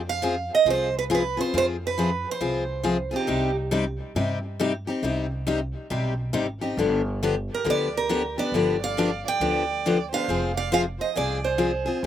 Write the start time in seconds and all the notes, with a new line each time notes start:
Already playing: F2
0.09 F5
0.22 F3 C4 F4 G#4
0.55 D#5
0.65 C2 F3 C4 F4 G#4
0.70 C5
0.99 B4
1.10 F3 C4 F4 G#4
1.15 B4
1.37 C4 F4 G#4 C5
1.53 F2 F3 C4 F4 G#4
1.58 C5
1.87 B4
1.98 F3 C4 F4 G#4
2.31 C5
2.40 C2 F3 C4 F4 G#4
2.83 F3 C4 F4 G#4
3.11 C4 D#4 F4 G#4
3.16 G4
3.27 C2 C3 G3 C4 D#4 G4
3.71 C3 G3 C4 D#4 G4
4.15 G2 C3 G3 C4 D#4 G4
4.59 C3 G3 C4 D#4 G4
4.87 C4 D#4 G4
5.02 C2 C3 G3 C4 D#4 G4
5.47 C3 G3 C4 D#4 G4
5.90 B1 C3 G3 C4 D#4 G4
6.33 G#1 C3 G3 C4 D#4 G4
6.61 C4 D#4 G4
6.77 G1 D3 F3 B3 D4 G4
7.23 D3 F3 B3 D4 G4
7.52 G4 A#4
7.64 D2 D3 F3 B3 D4 G4 B4
7.70 D5
7.97 G4 A#4
8.09 D3 F3 B3 D4 G4
8.38 B3 D4 G4 B4 D5
8.52 G1 D3 F3 B3 D4 G4
8.83 D5 F5
8.97 D3 F3 B3 D4 G4
9.25 D5 G5
9.40 D2 D3 F3 B3 D4 G4
9.86 D3 F3 B3 D4 G4
10.11 B3 D4 G4 C5 F5
10.28 F1 F3 C4 F4 G#4
10.57 D5 F5
10.72 F3 C4 F4 G#4 C5 F5
10.99 C5 D#5
11.16 C2 F3 C4 F4 G#4 D5
11.43 G#4 C5
11.58 F3 C4 F4 G#4
11.86 C4 F4 G#4
12.03 C2